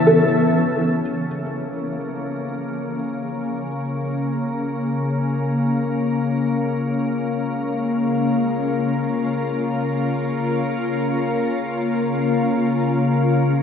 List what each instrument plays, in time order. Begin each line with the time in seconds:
Already playing: synth drone C#3 F#3, ambient pad E3 B3 E5 A5, felt piano B4
0.07 felt piano A4
0.98 synth drone C#3 A#3, ambient pad F3
1.30 ambient pad A#3
1.75 ambient pad G#4
2.22 ambient pad C#5
4.65 ambient pad F4
4.89 ambient pad A#4
6.52 ambient pad C#3
6.86 ambient pad G#3
9.60 ambient pad A#3
12.07 ambient pad C#3
12.25 ambient pad G#3